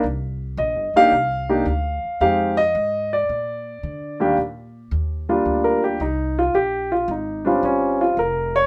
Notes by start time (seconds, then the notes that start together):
0.04 C2
0.57 A#1 D#5
0.75 G1
0.94 D#1 A#3 D4 D#4 G4 F5
1.11 C2
1.49 A#3 D4 D#4 G4
1.65 D2
2.04 muted upright bass stroke
2.21 F2 G#3 C4 D#4 G4 F5
2.57 D#5
2.75 G#2
3.13 D5
3.29 A#2
3.83 D3
4.20 D#2 G3 A#3 D4 G4
4.38 A#2
4.91 D#2
5.29 G3 A#3 D4 F4
5.46 D2
5.64 A#4
5.84 G4
6.00 C2 D#4
6.39 F4
6.54 A#1 G4
6.92 F4
7.08 G#1 D#4
7.45 G3 C4 C#4 D4 F4
7.63 G1 C#4
8.01 F4
8.17 F1 A#4
8.56 C#5